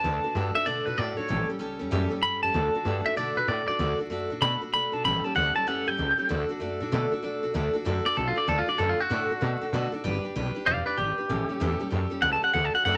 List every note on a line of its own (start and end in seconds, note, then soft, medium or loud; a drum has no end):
0.00 0.20 D2 loud
0.00 0.24 D3 medium
0.00 0.53 A5 loud
0.04 0.24 A3 medium
0.04 0.24 D4 medium
0.04 0.23 F#4 medium
0.04 0.23 A4 medium
0.24 0.34 D4 soft
0.24 0.35 F#4 soft
0.24 0.35 A4 medium
0.24 muted upright bass stroke medium
0.35 0.51 G2 medium
0.35 0.55 A3 medium
0.35 0.55 D4 medium
0.35 0.54 F#4 medium
0.35 0.54 A4 medium
0.55 0.65 D4 soft
0.55 0.66 F#4 medium
0.55 0.66 A4 medium
0.55 0.66 E5 medium
0.55 muted upright bass stroke medium
0.66 0.82 B2 loud
0.66 0.86 D3 medium
0.66 0.87 A3 medium
0.66 0.87 D4 loud
0.66 0.86 F#4 medium
0.66 0.85 A4 medium
0.66 0.86 D5 medium
0.86 0.96 B2 loud
0.86 0.97 D4 soft
0.86 0.97 F#4 medium
0.86 0.98 A4 medium
0.86 0.98 B4 medium
0.97 1.14 A2 medium
0.97 1.17 A3 medium
0.97 1.18 D4 medium
0.97 1.17 F#4 medium
0.97 1.16 A4 medium
0.97 1.17 D5 medium
1.17 1.29 D4 soft
1.17 1.29 F#4 medium
1.17 1.29 A4 medium
1.17 1.48 C#5 loud
1.17 muted upright bass stroke medium
1.28 1.46 A1 loud
1.28 1.49 A2 medium
1.28 1.49 E3 medium
1.28 1.49 G3 medium
1.28 1.48 C#4 medium
1.28 1.48 G4 medium
1.28 1.47 A4 medium
1.48 1.58 G3 soft
1.48 1.58 C#4 soft
1.48 1.59 G4 soft
1.48 1.59 A4 medium
1.48 muted upright bass stroke medium
1.59 1.76 C#2 medium
1.59 1.80 G3 medium
1.59 1.80 C#4 medium
1.59 1.78 G4 medium
1.59 1.78 A4 medium
1.79 1.90 E2 loud
1.79 1.91 G3 medium
1.79 1.90 C#4 medium
1.79 1.91 G4 medium
1.79 1.91 A4 medium
1.91 2.08 F#2 medium
1.91 2.11 A2 loud
1.91 2.12 E3 medium
1.91 2.11 G3 loud
1.91 2.10 C#4 medium
1.91 2.10 G4 loud
1.91 2.09 A4 loud
2.10 2.21 G3 medium
2.10 2.22 C#4 medium
2.10 2.22 G4 medium
2.10 2.22 A4 medium
2.22 2.39 G2 medium
2.22 2.43 G3 medium
2.22 2.43 C#4 medium
2.22 2.42 G4 medium
2.22 2.42 A4 medium
2.22 2.42 B5 loud
2.43 2.52 F#2 loud
2.43 2.54 G3 soft
2.43 2.54 C#4 medium
2.43 2.54 G4 medium
2.43 2.54 A4 medium
2.43 3.04 A5 loud
2.54 2.70 D2 loud
2.54 2.74 D3 medium
2.54 2.74 A3 medium
2.54 2.75 D4 medium
2.54 2.74 F#4 medium
2.54 2.73 A4 medium
2.74 2.85 D4 soft
2.74 2.85 F#4 medium
2.74 2.86 A4 medium
2.74 muted upright bass stroke medium
2.85 3.01 G2 medium
2.85 3.05 A3 medium
2.85 3.06 D4 medium
2.85 3.05 F#4 medium
2.85 3.04 A4 medium
3.05 3.16 D4 soft
3.05 3.16 F#4 medium
3.05 3.17 A4 medium
3.05 3.17 E5 medium
3.05 muted upright bass stroke medium
3.16 3.32 B2 medium
3.16 3.37 D3 medium
3.16 3.37 A3 medium
3.16 3.37 D4 medium
3.16 3.37 F#4 medium
3.16 3.36 A4 loud
3.16 3.36 D5 medium
3.36 3.45 B2 medium
3.36 3.47 D4 soft
3.36 3.48 F#4 soft
3.36 3.48 A4 medium
3.36 3.48 B4 medium
3.48 3.64 A2 medium
3.48 3.68 A3 medium
3.48 3.68 D4 medium
3.48 3.68 F#4 medium
3.48 3.67 A4 medium
3.48 3.66 D5 medium
3.68 3.78 D4 medium
3.68 3.79 F#4 medium
3.68 3.79 A4 medium
3.68 3.98 D5 loud
3.68 muted upright bass stroke medium
3.79 3.95 D2 loud
3.79 3.99 D3 medium
3.79 3.99 A3 medium
3.79 4.00 D4 medium
3.79 3.99 F#4 medium
3.79 3.98 A4 medium
3.99 4.10 D4 soft
3.99 4.10 F#4 soft
3.99 4.10 A4 medium
3.99 muted upright bass stroke medium
4.10 4.26 F#2 medium
4.10 4.30 A3 medium
4.10 4.31 D4 medium
4.10 4.30 F#4 medium
4.10 4.29 A4 medium
4.30 4.39 A2 loud
4.30 4.41 D4 medium
4.30 4.41 F#4 medium
4.30 4.41 A4 medium
4.41 4.57 B2 loud
4.41 4.61 D3 medium
4.41 4.62 A3 medium
4.41 4.62 D4 medium
4.41 4.61 F#4 medium
4.41 4.60 A4 medium
4.41 4.61 B5 loud
4.61 4.72 D4 soft
4.61 4.73 F#4 soft
4.61 4.73 A4 medium
4.72 4.89 B2 medium
4.72 4.93 A3 medium
4.72 4.93 D4 medium
4.72 4.92 F#4 medium
4.72 4.91 A4 medium
4.72 4.93 B5 loud
4.92 5.02 B2 medium
4.92 5.05 D4 soft
4.92 5.05 F#4 medium
4.92 5.04 A4 medium
4.92 5.04 A5 medium
5.04 5.21 A1 loud
5.04 5.24 A2 medium
5.04 5.24 E3 medium
5.04 5.25 G3 medium
5.04 5.24 C#4 loud
5.04 5.23 G4 medium
5.04 5.23 A4 medium
5.04 5.24 B5 loud
5.24 5.34 G3 soft
5.24 5.35 C#4 medium
5.24 5.35 G4 medium
5.24 5.35 A4 medium
5.24 5.35 A5 loud
5.24 muted upright bass stroke medium
5.35 5.52 D2 medium
5.35 5.55 G3 medium
5.35 5.55 C#4 medium
5.35 5.54 G4 medium
5.35 5.53 A4 medium
5.35 5.55 F#5 medium
5.55 5.66 G3 soft
5.55 5.66 C#4 medium
5.55 5.67 G4 medium
5.55 5.66 A4 medium
5.55 5.68 A5 loud
5.55 muted upright bass stroke medium
5.67 5.83 F#2 medium
5.67 5.87 A2 medium
5.67 5.87 E3 medium
5.67 5.87 G3 medium
5.67 5.86 C#4 medium
5.67 5.86 G4 medium
5.67 5.85 A4 medium
5.67 5.88 F#5 loud
5.86 5.96 G2 medium
5.86 5.96 G3 medium
5.86 5.97 C#4 soft
5.86 5.98 G4 medium
5.86 5.98 A4 medium
5.86 6.29 G5 loud
5.97 6.14 C#2 medium
5.97 6.18 G3 medium
5.97 6.18 C#4 medium
5.97 6.17 G4 medium
5.97 6.16 A4 medium
6.18 6.29 G3 soft
6.18 6.29 C#4 soft
6.18 6.29 G4 medium
6.18 6.29 A4 medium
6.18 muted upright bass stroke medium
6.29 6.46 D2 loud
6.29 6.49 D3 medium
6.29 6.49 A3 medium
6.29 6.49 D4 medium
6.29 6.48 F#4 medium
6.29 6.48 A4 medium
6.49 6.60 D4 medium
6.49 6.60 F#4 medium
6.49 6.60 A4 medium
6.60 6.77 F#2 loud
6.60 6.80 A3 medium
6.60 6.81 D4 medium
6.60 6.80 F#4 medium
6.60 6.79 A4 medium
6.80 6.90 A2 loud
6.80 6.92 D4 medium
6.80 6.92 F#4 medium
6.80 6.92 A4 medium
6.92 7.08 B2 loud
6.92 7.12 D3 medium
6.92 7.12 A3 loud
6.92 7.12 D4 medium
6.92 7.11 F#4 loud
6.92 7.10 A4 loud
7.12 7.22 D4 medium
7.12 7.23 F#4 medium
7.12 7.23 A4 medium
7.12 muted upright bass stroke medium
7.22 7.39 B2 medium
7.22 7.43 A3 medium
7.22 7.43 D4 medium
7.22 7.42 F#4 medium
7.22 7.42 A4 medium
7.43 7.53 B2 medium
7.43 7.53 D4 soft
7.43 7.54 F#4 medium
7.43 7.54 A4 medium
7.54 7.70 D2 medium
7.54 7.74 D3 medium
7.54 7.74 A3 loud
7.54 7.74 D4 medium
7.54 7.73 F#4 medium
7.54 7.72 A4 loud
7.73 7.85 D4 medium
7.73 7.85 F#4 medium
7.73 7.85 A4 medium
7.85 8.01 F#2 medium
7.85 8.05 D3 medium
7.85 8.05 A3 medium
7.85 8.05 D4 medium
7.85 8.04 F#4 loud
7.85 8.03 A4 loud
8.04 8.16 D4 soft
8.04 8.16 F#4 medium
8.04 8.16 A4 medium
8.04 8.16 D5 loud
8.04 muted upright bass stroke medium
8.16 8.33 B1 medium
8.16 8.36 A3 medium
8.16 8.37 D4 medium
8.16 8.35 F#4 medium
8.16 8.27 A4 medium
8.16 8.35 A4 medium
8.28 8.38 F4 medium
8.36 8.47 D4 soft
8.36 8.47 F#4 soft
8.36 8.48 A4 medium
8.36 8.48 D5 medium
8.47 8.63 D2 medium
8.47 8.68 D3 medium
8.47 8.68 A3 medium
8.47 8.67 D4 medium
8.47 8.67 F#4 medium
8.47 8.58 A4 medium
8.47 8.65 A4 medium
8.59 8.69 F4 medium
8.66 8.78 D4 soft
8.66 8.78 F#4 medium
8.66 8.78 A4 medium
8.66 8.79 D5 medium
8.66 muted upright bass stroke medium
8.78 8.95 F#2 loud
8.78 8.99 D3 medium
8.78 8.99 A3 medium
8.78 8.99 D4 medium
8.78 8.99 F#4 medium
8.78 8.89 A4 medium
8.78 8.98 A4 medium
8.89 9.00 F4 medium
8.99 9.09 D4 soft
8.99 9.10 F#4 soft
8.99 9.91 F#4 loud
8.99 9.10 A4 medium
8.99 muted upright bass stroke medium
9.10 9.26 A2 medium
9.10 9.30 D3 medium
9.10 9.30 A3 medium
9.10 9.31 D4 medium
9.10 9.30 F#4 medium
9.10 9.29 A4 loud
9.30 9.40 D4 soft
9.30 9.41 F#4 medium
9.30 9.42 A4 medium
9.30 muted upright bass stroke medium
9.41 9.57 B2 loud
9.41 9.61 A3 medium
9.41 9.62 D4 medium
9.41 9.61 F#4 medium
9.41 9.60 A4 medium
9.61 9.73 D4 medium
9.61 9.73 F#4 medium
9.61 9.73 A4 medium
9.61 muted upright bass stroke medium
9.73 9.88 B2 medium
9.73 9.93 D3 medium
9.73 9.93 A3 medium
9.73 9.93 D4 medium
9.73 9.92 F#4 loud
9.73 9.91 A4 loud
9.92 10.03 D4 medium
9.92 10.04 F#4 medium
9.92 10.04 A4 medium
9.92 muted upright bass stroke medium
10.04 10.20 G1 loud
10.04 10.24 G3 medium
10.04 10.24 D4 medium
10.04 10.24 G4 loud
10.04 10.23 B4 loud
10.24 10.34 D4 soft
10.24 10.35 G4 medium
10.24 10.35 B4 medium
10.36 10.51 B1 medium
10.36 10.55 G3 medium
10.36 10.56 D4 loud
10.36 10.55 G4 medium
10.36 10.54 B4 loud
10.55 10.66 D4 medium
10.55 10.66 G4 medium
10.55 10.66 B4 medium
10.55 muted upright bass stroke medium
10.66 10.82 E1 medium
10.66 10.86 G3 medium
10.66 10.87 D4 medium
10.66 10.85 G4 medium
10.66 10.84 B4 medium
10.66 10.86 D5 medium
10.66 10.86 F5 medium
10.86 10.97 D4 soft
10.86 10.97 G4 medium
10.86 10.98 B4 medium
10.86 10.97 B4 medium
10.86 10.98 D5 loud
10.97 11.13 G#1 medium
10.97 11.18 G3 medium
10.97 11.18 D4 medium
10.97 11.89 G4 loud
10.97 11.18 G4 medium
10.97 11.17 B4 medium
11.18 11.30 D4 soft
11.18 11.29 G4 medium
11.18 11.29 B4 medium
11.18 muted upright bass stroke medium
11.29 11.45 A1 medium
11.29 11.49 A2 medium
11.29 11.49 E3 medium
11.29 11.50 G3 medium
11.29 11.49 C#4 medium
11.29 11.48 G4 medium
11.29 11.48 A4 medium
11.49 11.60 G3 soft
11.49 11.60 C#4 medium
11.49 11.60 G4 medium
11.49 11.60 A4 medium
11.49 muted upright bass stroke medium
11.60 11.76 E2 medium
11.60 11.80 A2 medium
11.60 11.80 E3 medium
11.60 11.80 G3 medium
11.60 11.79 C#4 loud
11.60 11.79 G4 loud
11.60 11.78 A4 loud
11.80 11.89 G3 medium
11.80 11.90 C#4 medium
11.80 11.91 G4 medium
11.80 11.91 A4 medium
11.80 muted upright bass stroke medium
11.90 12.07 F#2 medium
11.90 12.11 G3 medium
11.90 12.10 C#4 medium
11.90 12.10 G4 medium
11.90 12.09 A4 medium
12.10 12.21 G3 medium
12.10 12.21 C#4 medium
12.10 12.21 G4 medium
12.10 12.22 A4 medium
12.10 muted upright bass stroke medium
12.22 12.38 C#2 medium
12.22 12.42 A2 medium
12.22 12.42 E3 medium
12.22 12.42 G3 medium
12.22 12.42 C#4 medium
12.22 12.41 G4 medium
12.22 12.40 A4 medium
12.22 12.32 F#5 medium
12.33 12.43 A5 medium
12.42 12.53 G3 soft
12.42 12.54 C#4 soft
12.42 12.54 G4 medium
12.42 12.54 A4 medium
12.42 12.52 F#5 medium
12.42 muted upright bass stroke medium
12.53 12.70 D2 loud
12.53 12.74 D3 medium
12.53 12.74 A3 medium
12.53 12.74 D4 medium
12.53 12.73 F#4 medium
12.53 12.72 A4 medium
12.53 12.65 F#5 medium
12.65 12.74 A5 medium
12.73 12.85 D4 soft
12.73 12.85 F#4 soft
12.73 12.85 A4 medium
12.73 12.84 F#5 medium
12.85 12.97 F#2 medium
12.85 12.97 D3 medium
12.85 12.97 A3 medium
12.85 12.97 D4 medium
12.85 12.97 F#4 medium
12.85 12.97 A4 medium
12.85 12.95 F#5 medium